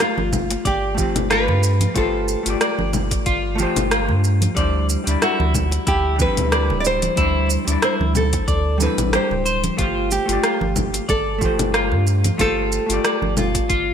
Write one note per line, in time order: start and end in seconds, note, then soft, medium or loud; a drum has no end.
0.00 0.93 A3 medium
0.00 0.30 F4 medium
0.00 0.94 F4 medium
0.00 0.66 F4 medium
0.00 0.95 G4 medium
0.00 0.96 D5 medium
0.00 cross-stick loud
0.00 closed hi-hat soft
0.00 shaker soft
0.18 0.56 G1 medium
0.18 high conga medium
0.33 kick medium
0.33 low conga medium
0.33 shaker medium
0.51 closed hi-hat medium
0.51 high bongo medium
0.51 shaker soft
0.65 1.05 G1 medium
0.65 1.32 G4 medium
0.65 0.95 D5 medium
0.65 kick loud
0.65 closed hi-hat soft
0.65 shaker soft
0.95 1.91 A3 loud
0.95 1.92 F4 medium
0.95 kick loud
0.95 high conga medium
0.95 shaker medium
0.99 1.94 C4 loud
0.99 1.93 G4 medium
1.15 1.49 G1 loud
1.15 closed hi-hat medium
1.15 low conga medium
1.15 shaker soft
1.30 1.61 F4 loud
1.30 1.97 B4 loud
1.30 cross-stick loud
1.30 closed hi-hat soft
1.30 shaker soft
1.48 1.87 G2 loud
1.48 high bongo medium
1.48 low conga medium
1.63 shaker medium
1.80 closed hi-hat medium
1.80 high bongo soft
1.80 high conga medium
1.80 shaker soft
1.94 2.36 G1 loud
1.94 2.41 A3 medium
1.94 2.42 F4 medium
1.94 2.25 F4 medium
1.94 2.42 G4 medium
1.94 2.90 A4 loud
1.94 2.43 C5 medium
1.94 kick loud
1.94 closed hi-hat soft
1.94 high bongo medium
1.94 shaker soft
2.28 shaker medium
2.43 2.55 G1 medium
2.43 3.54 A3 medium
2.43 3.55 F4 medium
2.43 closed hi-hat medium
2.43 shaker soft
2.48 3.56 G4 medium
2.48 3.57 D5 medium
2.61 2.91 D5 medium
2.61 cross-stick loud
2.61 closed hi-hat soft
2.61 shaker soft
2.79 3.17 G1 medium
2.79 high conga medium
2.93 low conga medium
2.93 shaker medium
3.11 kick loud
3.11 closed hi-hat medium
3.11 high bongo medium
3.11 shaker soft
3.26 3.66 G1 medium
3.26 3.57 F4 loud
3.26 kick loud
3.26 closed hi-hat soft
3.26 shaker soft
3.55 4.51 A3 loud
3.55 4.53 F4 medium
3.55 shaker medium
3.60 4.54 G4 medium
3.60 4.55 C5 loud
3.60 high conga medium
3.76 4.10 G1 medium
3.76 closed hi-hat medium
3.76 low conga medium
3.76 shaker medium
3.91 4.21 F4 medium
3.91 cross-stick loud
3.91 closed hi-hat soft
3.91 shaker soft
4.09 4.48 G2 loud
4.09 low conga medium
4.24 shaker medium
4.42 closed hi-hat medium
4.42 high conga loud
4.42 shaker soft
4.55 4.97 D2 loud
4.55 5.02 G3 medium
4.55 5.03 D4 medium
4.55 5.03 E4 medium
4.55 5.04 C5 loud
4.55 4.86 D5 medium
4.55 kick loud
4.55 closed hi-hat soft
4.55 high bongo medium
4.55 shaker soft
4.89 shaker medium
5.04 5.16 D2 medium
5.04 6.15 G3 medium
5.04 6.16 D4 medium
5.04 closed hi-hat medium
5.04 shaker soft
5.08 6.17 E4 medium
5.08 6.18 D5 medium
5.22 5.53 E4 loud
5.22 5.84 F#4 medium
5.22 cross-stick loud
5.22 closed hi-hat soft
5.22 shaker soft
5.40 5.78 D2 loud
5.40 high conga loud
5.55 kick medium
5.55 low conga medium
5.55 shaker medium
5.72 closed hi-hat medium
5.72 high bongo medium
5.72 shaker soft
5.87 6.27 D2 medium
5.87 6.17 E4 medium
5.87 6.21 G4 loud
5.87 kick loud
5.87 closed hi-hat soft
5.87 shaker soft
6.16 7.12 G3 medium
6.16 7.13 D4 medium
6.16 kick loud
6.16 high conga medium
6.16 shaker medium
6.21 7.16 C4 loud
6.21 7.15 E4 medium
6.21 6.80 B4 loud
6.37 6.72 D2 loud
6.37 closed hi-hat medium
6.37 low conga medium
6.37 shaker medium
6.52 6.82 D5 medium
6.52 cross-stick loud
6.52 closed hi-hat soft
6.52 shaker soft
6.70 7.09 D1 loud
6.70 high bongo soft
6.70 low conga medium
6.80 6.86 D5 medium
6.85 7.83 C5 loud
6.85 shaker medium
7.02 closed hi-hat medium
7.02 high bongo soft
7.02 high conga loud
7.02 shaker soft
7.16 7.57 D2 loud
7.16 7.63 G3 medium
7.16 7.63 D4 medium
7.16 7.49 E4 loud
7.16 7.64 E4 medium
7.16 7.65 C5 loud
7.16 kick loud
7.16 closed hi-hat soft
7.16 high bongo medium
7.16 shaker soft
7.50 shaker medium
7.65 7.77 D2 medium
7.65 8.75 G3 medium
7.65 8.77 D4 medium
7.65 closed hi-hat medium
7.65 shaker soft
7.69 8.78 E4 medium
7.69 8.79 D5 medium
7.82 8.12 E4 medium
7.82 7.93 C5 medium
7.82 cross-stick loud
7.82 closed hi-hat soft
7.82 shaker soft
8.00 8.39 D2 medium
8.00 high conga loud
8.15 8.82 A4 loud
8.15 low conga medium
8.15 shaker medium
8.33 kick loud
8.33 closed hi-hat medium
8.33 high bongo medium
8.33 shaker soft
8.48 8.88 D2 medium
8.48 8.77 D5 medium
8.48 kick loud
8.48 closed hi-hat soft
8.48 shaker soft
8.78 9.73 G3 loud
8.78 9.74 D4 medium
8.78 high conga medium
8.78 shaker medium
8.82 9.77 C4 loud
8.82 9.76 E4 medium
8.82 9.12 B4 medium
8.98 9.18 A1 medium
8.98 closed hi-hat medium
8.98 low conga medium
8.98 shaker soft
9.13 9.43 G4 medium
9.13 9.61 C5 medium
9.13 cross-stick loud
9.13 closed hi-hat soft
9.13 shaker soft
9.31 9.70 D1 loud
9.31 low conga medium
9.46 9.75 C5 medium
9.46 shaker medium
9.64 closed hi-hat medium
9.64 high conga medium
9.64 shaker soft
9.77 10.18 G1 loud
9.77 10.24 A3 medium
9.77 10.09 F4 loud
9.77 10.25 F4 medium
9.77 10.25 G4 medium
9.77 10.26 C5 medium
9.77 kick loud
9.77 closed hi-hat soft
9.77 high bongo medium
9.77 shaker soft
10.11 11.05 G4 loud
10.11 shaker medium
10.26 10.38 G1 medium
10.26 11.36 A3 medium
10.26 11.37 F4 medium
10.26 closed hi-hat medium
10.26 shaker soft
10.30 11.39 G4 medium
10.30 11.40 D5 medium
10.43 10.73 F4 medium
10.43 cross-stick medium
10.43 closed hi-hat soft
10.43 shaker soft
10.61 11.00 G1 medium
10.61 high conga loud
10.76 kick medium
10.76 low conga medium
10.76 shaker medium
10.94 closed hi-hat medium
10.94 high bongo medium
10.94 shaker soft
11.09 11.49 G1 medium
11.09 12.03 A4 loud
11.09 11.38 D5 medium
11.09 kick loud
11.09 closed hi-hat soft
11.09 shaker soft
11.38 12.34 A3 loud
11.38 12.35 F4 medium
11.38 kick loud
11.38 high conga medium
11.38 shaker medium
11.43 12.36 G4 medium
11.43 12.38 C5 loud
11.59 11.93 G1 medium
11.59 closed hi-hat medium
11.59 low conga medium
11.59 shaker soft
11.74 12.05 F4 loud
11.74 cross-stick loud
11.74 closed hi-hat soft
11.74 shaker soft
11.91 12.30 G2 loud
11.91 high bongo soft
11.91 low conga medium
12.07 shaker medium
12.24 closed hi-hat medium
12.24 high bongo soft
12.24 high conga medium
12.24 shaker soft
12.38 12.79 G1 loud
12.38 12.85 A3 medium
12.38 12.85 F4 medium
12.38 12.69 F4 medium
12.38 12.86 G4 medium
12.38 13.38 A4 loud
12.38 12.86 C5 loud
12.38 kick loud
12.38 closed hi-hat soft
12.38 high bongo medium
12.38 shaker soft
12.72 shaker medium
12.86 12.99 G1 loud
12.86 13.94 A3 medium
12.86 13.94 F4 medium
12.86 closed hi-hat medium
12.86 shaker soft
12.91 13.94 G4 medium
12.91 13.94 D5 medium
13.04 13.34 D5 medium
13.04 cross-stick loud
13.04 closed hi-hat soft
13.04 shaker soft
13.22 13.61 G1 loud
13.22 high conga medium
13.37 13.94 F4 medium
13.37 low conga medium
13.37 shaker medium
13.54 kick loud
13.54 closed hi-hat medium
13.54 high bongo medium
13.54 shaker soft
13.69 13.94 G1 medium
13.69 13.94 F4 loud
13.69 kick loud
13.69 closed hi-hat soft
13.69 shaker soft